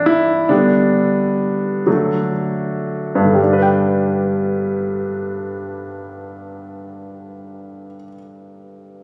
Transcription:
Already playing: E3 A3 C4 D4
0.06 E4
0.49 D3 G3 B3 D4
1.86 D3 F#3 A3
3.15 G2
3.25 D3
3.34 G3
3.43 D4
3.53 B4
3.62 G5

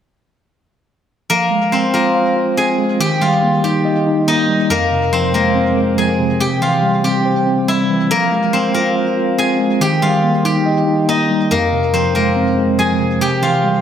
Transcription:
1.30 F3 A#3 A#4
1.51 G#3
1.72 C4 C5
1.94 A#3 F4 A#4
2.15 F5
2.36 F4
2.57 C4 G#4 G#5
2.79 G#3
3.00 D#3 G4 G5
3.21 G3 F4 F5
3.43 A#3
3.64 D#4 G4 G5
3.85 D#5
4.07 D#4
4.28 A#3 D#4 D#5
4.49 G3
4.70 F2 A#3 A#4
4.92 C3
5.13 F3 C4 C5
5.34 G#3 A#3 A#4
5.55 C4
5.76 G#3
5.98 F3 G#4 G#5
6.19 C3
6.40 C3 G4 G5
6.61 E3 F4 F5
6.83 G3
7.04 C4 G4 G5
7.25 C5
7.47 C4
7.68 G3 E4 E5
7.89 E3
8.11 F3 A#3 A#4
8.32 G#3
8.53 C4 C5
8.74 A#3 F4 A#4
8.96 F5
9.17 F4
9.38 C4 G#4 G#5
9.59 G#3
9.81 D#3 G4 G5
10.02 G3 F4 F5
10.23 A#3
10.45 D#4 G4 G5
10.66 D#5
10.87 D#4
11.08 A#3 D#4 D#5
11.30 G3
11.51 F2 A#3 A#4
11.73 C3
11.94 F3 C4 C5
12.15 G#3 A#3 A#4
12.36 C4
12.58 G#3
12.79 F3 G#4 G#5
13.00 C3
13.21 C3 G4 G5
13.42 E3 F4 F5
13.64 G3

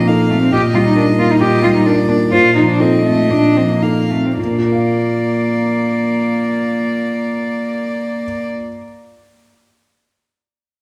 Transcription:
Already playing: A#2 F3 A#3 C4 D#4 A4
0.08 D#4 A4 F5
0.30 A3 C4
0.42 C4
0.52 A#2 G4 D#5
0.74 G3 F4
0.86 D#4
0.96 D4 D#4 A#4
1.18 A#3 F4
1.31 D#4
1.40 A#2 G4 D#5
1.63 G3 F4
1.75 D#4
1.86 D4 D#4 A#4 D5
2.08 A#3 D4
2.32 A#2 F4 C5
2.56 F3 D#4
2.69 D4
2.80 C4 D#4 A4 D#5
3.05 A3 C4
3.30 A#2 D4
3.56 F3 C4
3.70 A#3
3.82 D#4 A4 F5
4.10 A3 C4
4.26 C4
4.37 A#2 A#3 D5
4.44 A#3
4.51 D4
4.58 F4
4.65 A#4
4.72 F5

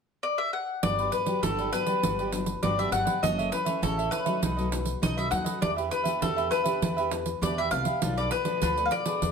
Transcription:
0.23 D5
0.38 E5
0.53 F#5
0.83 G1 G2 F#3 B3 D4 F#4 G4 B4 D5, pandeiro
0.98 G4 B4 D5, pandeiro
1.12 B4, muted cavaquinho stroke, pandeiro
1.26 F#3 B3 D4 G4 B4 D5, pandeiro
1.43 G1 D3 F#4 G4 A4 B4 D5, pandeiro
1.59 G4 B4 D5, pandeiro
1.72 F#3 B3 D4 B4, pandeiro
1.86 F#3 B3 D4 G4 B4 D5, pandeiro
2.03 G1 G2 F#4 G4 B4 D5, pandeiro
2.19 G4 B4 D5, pandeiro
2.32 F#3 B3 D4, muted cavaquinho stroke, pandeiro
2.46 pandeiro
2.63 G1 D3 F#3 B3 D4 F#4 G4 B4 D5, pandeiro
2.78 F#3 B3 D4 G4 B4 D5 E5, pandeiro
2.91 G1 F#3 B3 D4 F#4 G4 B4 D5 F#5, pandeiro
3.05 G4 B4 D5, pandeiro
3.22 F#1 F#2 E3 A3 C#4 F#4 A4 C#5 D#5 E5, pandeiro
3.38 A4 C#5 E5, pandeiro
3.51 E3 A3 C#4 B4, muted cavaquinho stroke, pandeiro
3.65 E3 A3 C#4 A4 C#5 E5, pandeiro
3.82 A1 C#3 F#4 A4 C#5 E5, pandeiro
3.97 A4 C#5 E5, pandeiro
4.11 B4, pandeiro
4.25 F#3 A3 D#4 A4 C#5 E5, pandeiro
4.42 B1 B2 D#4 A4 B4 D#5, pandeiro
4.57 F#3 A3 D#4 A4 B4 D#5, pandeiro
4.71 F#3 A3 D#4, muted cavaquinho stroke, pandeiro
4.85 pandeiro
5.02 B1 F#2 F#3 A3 D#4 A4 B4 D#5, pandeiro
5.17 F#3 A3 D#4 A4 B4 D#5 E5, pandeiro
5.30 D#2 F#3 A3 D#4 A4 B4 D#5 F#5, pandeiro
5.44 A4 B4 D#5, pandeiro
5.61 E2 E3 B3 D4 G4 B4 D5 E5, pandeiro
5.76 G4 B4 E5, pandeiro
5.90 B4, muted cavaquinho stroke, pandeiro
6.04 B3 D4 G4 B4 E5, pandeiro
6.20 E2 B2 D4 G4 A4 B4 E5, pandeiro
6.36 G4 B4 E5, pandeiro
6.51 B3 D4 G4 B4, pandeiro
6.64 B3 D4 G4 B4 E5, pandeiro
6.81 E2 E3 D4 G4 B4 E5, pandeiro
6.97 G4 B4 E5, pandeiro
7.11 B3 D4 G4, muted cavaquinho stroke, pandeiro
7.26 pandeiro
7.41 E2 B2 B3 D4 G4 B4 D5 E5, pandeiro
7.58 G4 B4 E5, pandeiro
7.71 C2 B3 D4 G4 B4 E5 F5, pandeiro
7.85 G4 B4 E5, pandeiro
8.02 B1 B2 F3 A3 D4 F4 A4 B4 D5, pandeiro
8.17 A4 B4 D5, pandeiro
8.31 B4, muted cavaquinho stroke, pandeiro
8.45 F3 A3 D4 A4 B4 D5, pandeiro
8.62 D2 B2 F4 A4 B4 D5, pandeiro
8.77 A4 B4 D5, pandeiro
8.85 F5
8.91 D5, pandeiro
9.05 B3 D4 G#4 A4 B4 D5, pandeiro
9.22 E2 E3 D4 G#4 B4 E5, pandeiro

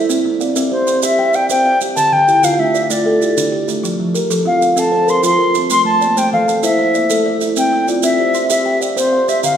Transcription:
Already playing: E4 D5
0.09 C4, maracas
0.25 C4
0.41 D5 F5, maracas
0.56 C4 E5, maracas
0.71 G4 C5
0.87 C6, maracas
1.03 G4 E5, maracas
1.19 G5
1.34 D5 F5 G5, maracas
1.49 C4 C5 G5, maracas
1.66 F5
1.81 G4, maracas
1.96 D3 A5, maracas
2.12 D3 G5
2.28 E4 G4, maracas
2.43 D3 F4 F5, maracas
2.59 A3 D4 E5
2.74 D5, maracas
2.90 A3 F4 D5, maracas
3.06 A4
3.21 E4 G4, maracas
3.37 D3 D4, maracas
3.52 G4
3.68 A3, maracas
3.83 F3, maracas
3.99 F3
4.14 G4 A#4, maracas
4.30 F3 A4, maracas
4.45 C4 F4 F5
4.61 F5, maracas
4.76 C4 A4 A5, maracas
4.92 C5
5.07 A#4 C6, maracas
5.23 F3 F4 C6, maracas
5.38 A#4
5.54 C4, maracas
5.70 A3 C6, maracas
5.85 A3 A5
6.01 A#3 D5, maracas
6.17 A3 C5 G5, maracas
6.33 E3 A4 F5
6.48 A5, maracas
6.63 E4 C5 E5, maracas
6.79 E5
6.94 A#3 D5, maracas
7.10 A3 A4, maracas
7.26 D5
7.41 E4, maracas
7.56 C4 G5, maracas
7.73 C4
7.88 F4 D5, maracas
8.03 C4 E5, maracas
8.19 G4 C5
8.34 C6, maracas
8.50 G4 E5, maracas
8.66 G5
8.81 D5 F5, maracas
8.96 C4 C5, maracas
9.13 F5
9.28 G4 E5, maracas
9.43 D3 F5, maracas

